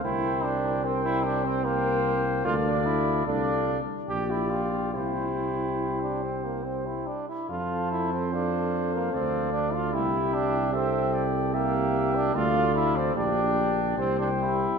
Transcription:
<<
  \new Staff \with { instrumentName = "Cornet" } { \time 3/4 \key c \mixolydian \tempo 4 = 74 g''4 g''4 g''4 | f''4 f''8 r8 g''4 | g''2~ g''8 r8 | a''4 f''2 |
g''4 g''4 g''4 | f''4 g''4 g''4 | }
  \new Staff \with { instrumentName = "Trumpet" } { \time 3/4 \key c \mixolydian c''4 c''4 c''4 | d''4 d''8 r8 d''4 | c''2~ c''8 r8 | c''2 d''4 |
e''4 e''8 d''8 e''4 | d''4 d''4 c''4 | }
  \new Staff \with { instrumentName = "French horn" } { \time 3/4 \key c \mixolydian bes'4 bes'4 bes'4 | a'4 a'8 r8 g'4 | g'2~ g'8 r8 | a'4 a'2 |
g'4 a'4 g'4 | a'4 g'4 g'4 | }
  \new Staff \with { instrumentName = "Trombone" } { \time 3/4 \key c \mixolydian e'8 d'8 c'16 e'16 d'16 c'16 bes4 | f'16 d'16 e'8 d'8. r16 g'16 e'16 f'8 | e'4~ e'16 d'16 c'16 bes16 c'16 e'16 d'16 e'16 | f'8 e'16 c'16 d'8. bes16 c'8 d'16 f'16 |
e'8 d'8 c'8. r16 bes8. d'16 | f'8 e'16 c'16 d'4 c'16 d'16 e'8 | }
  \new Staff \with { instrumentName = "Tuba" } { \clef bass \time 3/4 \key c \mixolydian c,2. | d,4 c,8 r8 bes,,4 | c,2~ c,8 r8 | f,2 d,4 |
c,2. | d,4 bes,,4 c,4 | }
>>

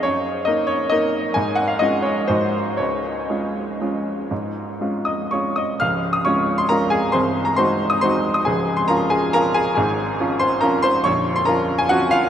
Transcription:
\new Staff \with { instrumentName = "Grand piano" } { \time 3/4 \key des \major \tempo 4 = 135 << { des''4 ees''8 des''8 ees''4 | aes''8 ges''16 f''16 ees''8 des''8 c''4 | des''2.~ | des''4. <ees'' ees'''>8 <des'' des'''>8 <ees'' ees'''>8 |
<f'' f'''>8. ees'''16 <des'' des'''>8. c'''16 <bes' bes''>8 <aes' aes''>8 | <c'' c'''>8. bes''16 <c'' c'''>8. ees'''16 <c'' c'''>8. ees'''16 | <aes' aes''>8. c'''16 <bes' bes''>8 <aes' aes''>8 <bes' bes''>8 <aes' aes''>8 | <aes' aes''>4 r8 <c'' c'''>8 <bes' bes''>8 <c'' c'''>8 |
<des'' des'''>8. c'''16 <bes' bes''>8. aes''16 <ges' ges''>8 <f' f''>8 | } \\ { ges,4 <bes ees' bes'>4 <bes ees' bes'>4 | aes,4 <aes des' f'>4 <aes, aes ees' ges'>4 | des,4 <aes des' f'>4 <aes des' f'>4 | aes,4 <aes des' f'>4 <aes des' f'>4 |
<des,, des,>4 <aes des' f'>4 <aes des' f'>4 | <c,, c,>4 <aes ees' ges'>4 <aes ees' ges'>4 | <des,, des,>4 <f des' f'>4 <f des' f'>4 | <aes,, aes,>4 <f des' f'>4 <f des' f'>4 |
<bes,,, bes,,>4 <f des' f'>4 <f des' f'>4 | } >> }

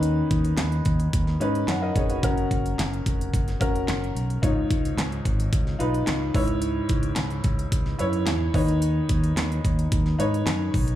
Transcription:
<<
  \new Staff \with { instrumentName = "Upright piano" } { \time 4/4 \key b \lydian \tempo 4 = 109 << { r2. <cis'' fis''>16 <ais' dis''>16 <gis' cis''>16 <fis' b'>16~ | <fis' b'>16 r2. r8. | r1 | r1 |
r1 | } \\ { <dis cis' dis' b'>4 r4. <cis' dis' b'>4~ <cis' dis' b'>16 r16 | <cis cis' fis' ais'>4. r4 <cis' fis' ais'>4~ <cis' fis' ais'>16 r16 | <gis, dis' eis' cis''>4. r4 <dis' eis' b'>4 <gis, e' b' cis''>8~ | <gis, e' b' cis''>4 r4. <e' b' cis''>4 <dis dis' b' cis''>8~ |
<dis dis' b' cis''>4 r4. <dis' b' cis''>4~ <dis' b' cis''>16 r16 | } >> }
  \new Staff \with { instrumentName = "Fingered electric bass" } { \clef bass \time 4/4 \key b \lydian dis,8 dis,8 dis,8 dis,8 dis,8 gis,8 fis,8 eis,,8 | fis,,8 fis,,8 fis,,8 eis,,8 fis,,8 eis,,8 fis,,8 b,,8 | cis,8 cis,8 cis,8 gis,,8 cis,8 b,,8 cis,8 cis,8~ | cis,8 cis,8 cis,8 cis,8 cis,8 fis,8 e,8 dis,8~ |
dis,8 dis,8 dis,8 dis,8 dis,8 gis,8 fis,8 b,,8 | }
  \new DrumStaff \with { instrumentName = "Drums" } \drummode { \time 4/4 hh8 <hh bd>16 hh16 <hc hh sn>16 hh16 <hh bd>16 hh16 <hh bd>16 sn16 hh16 hh16 <hc hh sn>8 <hh bd>16 hh16 | <hh bd>16 hh16 <hh bd>16 hh16 <hc hh sn>16 hh16 <hh bd>16 hh16 <hh bd>16 <hh sn>16 <hh bd>16 hh16 <hc hh sn>16 hh16 hh16 hh16 | <hh bd>8 <hh bd>16 hh16 <hc hh sn>16 hh16 <hh bd>16 hh16 <hh bd>16 sn16 hh16 hh16 <hc hh sn>8 <hho bd>16 hh16 | hh8 <hh bd>16 hh16 <hc hh sn>16 hh16 <hh bd>16 hh16 <hh bd>16 sn16 hh16 hh16 <hc hh sn>8 <hho bd>16 hh16 |
hh8 <hh bd>16 hh16 <hc hh sn>16 hh16 <hh bd>16 hh16 <hh bd>16 sn16 hh16 hh16 <hc hh sn>8 <hho bd>16 hh16 | }
>>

